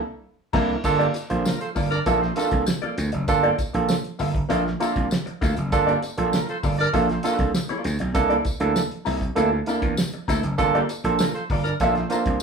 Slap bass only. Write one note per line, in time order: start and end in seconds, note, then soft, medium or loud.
0.54 0.75 C2 medium
0.84 1.07 G1 loud
1.30 1.42 A#1 loud
1.76 1.99 G1 medium
2.06 2.29 A#1 loud
2.52 2.63 C2 medium
2.98 3.09 D2 medium
3.13 3.25 F#1 medium
3.28 3.51 G1 loud
3.74 3.86 A#1 loud
4.19 4.42 G1 medium
4.50 4.73 A#1 loud
4.96 5.07 C2 loud
5.41 5.53 D2 medium
5.58 5.72 F#1 medium
5.72 5.95 G1 loud
6.18 6.29 A#1 loud
6.64 6.86 G1 medium
6.94 7.16 A#1 loud
7.39 7.50 C2 medium
7.85 7.96 D2 medium
8.00 8.12 B1 loud
8.15 8.38 C2 loud
8.60 8.72 D2 loud
9.06 9.29 C2 medium
9.37 9.59 D2 medium
9.82 9.94 E2 medium
10.28 10.40 D2 medium
10.43 10.54 F#1 loud
10.59 10.81 G1 loud
11.04 11.15 A#1 loud
11.50 11.73 G1 medium
11.80 12.03 A#1 loud
12.26 12.37 C2 loud